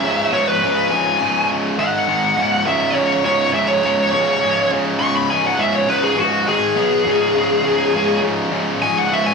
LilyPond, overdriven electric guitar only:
\new Staff \with { instrumentName = "Overdriven electric guitar" } { \clef bass \time 4/4 \key cis \minor \tempo 4 = 102 <cis, gis, cis>8 <cis, gis, cis>8 <cis, gis, cis>8 <cis, gis, cis>8 <cis, gis, cis>8 <cis, gis, cis>8 <gis, dis gis>8 <gis, dis gis>8 | <cis, gis, cis>8 <cis, gis, cis>8 <cis, gis, cis>8 <cis, gis, cis>8 <cis, gis, cis>8 <cis, gis, cis>8 <cis, gis, cis>8 <cis, gis, cis>8 | <cis, gis, cis>8 <cis, gis, cis>8 <cis, gis, cis>8 <cis, gis, cis>8 <cis, gis, cis>8 <cis, gis, cis>8 <gis, dis gis>8 <b, fis b>8 | <cis, gis, cis>8 <cis, gis, cis>8 <cis, gis, cis>8 <cis, gis, cis>8 <cis, gis, cis>8 <cis, gis, cis>8 <cis, gis, cis>8 <cis, gis, cis>8 | }